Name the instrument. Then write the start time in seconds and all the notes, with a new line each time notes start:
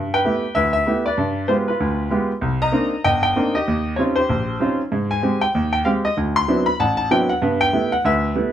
grand piano
Already playing: G2
0.14 B4 G5
0.25 A3 B3 E4 G4
0.55 D2 B4 E5
0.73 E5
0.86 A3 B3 E4 G4
1.06 B4 D5
1.18 G2
1.48 G#3 B3 F4 G4 C5
1.68 F4 B4
1.80 D2
2.10 G#3 B3 F4 G4
2.41 C2
2.62 D#5 A#5
2.72 A#3 C4 D4 D#4
3.04 G1 D#5 G5
3.23 G5
3.36 A#3 C4 D4 D#4
3.55 G4 D#5
3.68 D#2
3.96 G3 C4 C#4 D#4 F4 C#5
4.16 G4 C5
4.29 A#1
4.60 G3 C4 C#4 D#4 F4
4.92 G#2
5.11 G#5
5.22 G#3 C4 G4
5.41 G5
5.55 D#2
5.73 G5
5.85 G#3 C4 G4 F5
6.05 D#5
6.17 D2
6.36 C6
6.48 F#3 B3 C4 D4 E4
6.66 B5
6.80 A1 F#5 A5
6.97 A5
7.11 F#3 B3 C4 D4 E4 G5
7.29 F#5
7.42 G2 B3
7.61 G5
7.73 G3 A3 B3 E4
7.92 F#5
8.04 D2 B4 E5
8.35 G3 A3 B3 E4